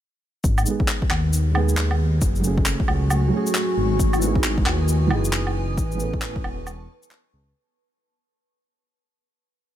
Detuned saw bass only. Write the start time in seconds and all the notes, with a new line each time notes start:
0.44 G#1
1.10 D#2
2.22 F#1
2.88 C#2
3.10 C#2
3.77 G#1
4.66 D#2
5.11 F#1
5.78 A1
6.44 E1
7.33 C#2